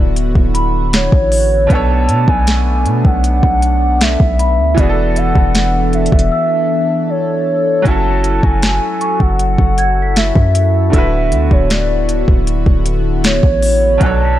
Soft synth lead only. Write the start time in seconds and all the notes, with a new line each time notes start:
Already playing: D5
0.94 C#5
1.72 A5
2.29 G#5
3.06 F#5
4.02 E5
4.79 D5
5.18 F#5
5.94 E5
7.10 C#5
7.86 A5
8.44 G#5
9.21 F#5
10.17 E5
10.94 E5
11.52 C#5
11.71 D5
13.25 C#5
14.02 A5